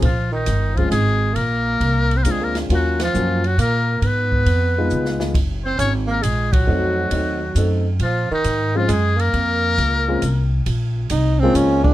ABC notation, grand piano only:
X:1
M:3/4
L:1/8
Q:"Swing" 1/4=136
K:Bbm
V:1 name="Grand piano"
z3 [A,CDF] z2 | z4 [A,C=DF]2 | [G,B,DF] z [G,B,DF] z3 | z3 [A,_CEF]3 |
z6 | [=A,CEG]2 [A,CE=A] z [A,CEA] z | z3 [A,CDF] z2 | z3 [A,CDF] z2 |
z3 [A,B,CDF]3 |]